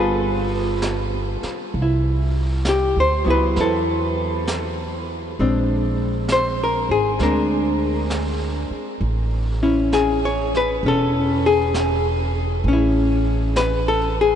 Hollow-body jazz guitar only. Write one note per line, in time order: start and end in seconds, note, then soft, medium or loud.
0.00 1.71 G3 soft
0.00 1.73 B3 soft
0.00 1.76 F4 soft
0.00 1.77 G#4 soft
0.00 1.41 B4 medium
1.82 3.27 E4 soft
2.69 2.98 G4 medium
3.00 3.26 C5 medium
3.24 5.38 F#3 soft
3.24 5.38 B3 soft
3.24 3.59 E4 soft
3.30 3.59 B4 medium
3.60 5.36 E4 soft
3.60 5.06 A4 medium
5.40 7.19 G#3 soft
5.40 7.21 C4 soft
5.40 7.21 D4 soft
6.32 6.62 C5 medium
6.64 6.91 A#4 medium
6.91 7.18 G#4 medium
7.21 9.01 G#3 soft
7.21 9.02 C4 soft
7.21 8.98 D4 medium
7.21 8.68 A#4 medium
9.63 10.85 C#4 soft
9.63 12.65 E4 medium
9.93 10.21 G#4 medium
10.25 10.52 C#5 medium
10.57 10.83 B4 medium
10.86 12.62 C#4 soft
10.86 11.46 A4 medium
11.46 12.31 G#4 medium
12.68 14.35 C#4 medium
12.73 14.35 E4 soft
13.57 13.84 B4 medium
13.88 14.18 A4 medium
14.21 14.35 G#4 medium